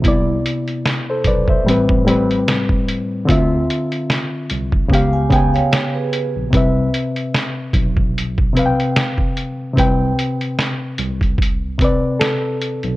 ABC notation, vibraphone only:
X:1
M:4/4
L:1/16
Q:"Swing 16ths" 1/4=74
K:C
V:1 name="Vibraphone"
z16 | z8 z [f_a] g [_df] d [_A_c]3 | z16 | z16 |]